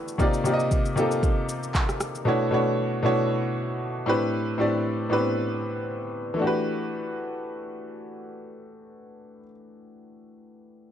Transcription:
Already playing: grand piano E3 A3 D4 F#4 G4 B4
0.08 shaker
0.18 grand piano C3 A#3 D#4 F4 G4 D5, kick, shaker
0.34 shaker
0.44 grand piano C3 A#3 D#4 F4 G4 D5, shaker
0.53 grand piano D#5
0.60 shaker
0.71 kick, shaker
0.85 shaker
0.96 grand piano C3 A#3 D#4 F4 G4 A4, shaker
1.11 shaker
1.23 kick, shaker
1.49 shaker
1.63 shaker
1.75 kick, clap, shaker
1.89 cross-stick, shaker
2.00 cross-stick, shaker
2.15 shaker
2.25 grand piano B2 A3 D4 E4 F#4 C#5
2.51 grand piano B2 A3 D4 E4 F#4 C#5
3.03 grand piano B2 A3 D4 E4 F#4 C#5
4.06 grand piano A2 C4 D4 E4 G4 B4
4.58 grand piano A2 C4 D4 E4 G4 D5
5.09 grand piano A2 B3 D4 E4 G4 B4
5.16 grand piano C4
6.34 grand piano E3 A3
6.39 grand piano D4 F#4
6.44 grand piano G4 B4

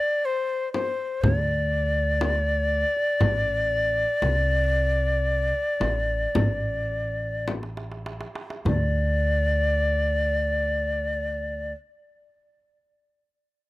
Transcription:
Already playing: ney D5
0.25 ney C5
0.73 ney C5, frame drum
1.22 upright bass D2, ney C#5, frame drum, darbuka dum
1.39 ney D5
2.21 darbuka tek, frame drum
2.97 darbuka ka
3.20 upright bass A1, frame drum, darbuka dum
3.72 darbuka ka
4.22 upright bass C2, darbuka tek, frame drum
4.76 darbuka ka
5.80 upright bass A1, darbuka tek, frame drum
6.35 upright bass A1, frame drum, darbuka dum
6.91 darbuka ka
7.48 darbuka tek, frame drum
7.63 darbuka ka
7.77 darbuka tek
7.92 darbuka ka
8.06 darbuka tek
8.21 darbuka ka
8.35 darbuka tek
8.50 darbuka ka
8.65 upright bass D2, ney D5, darbuka dum, frame drum

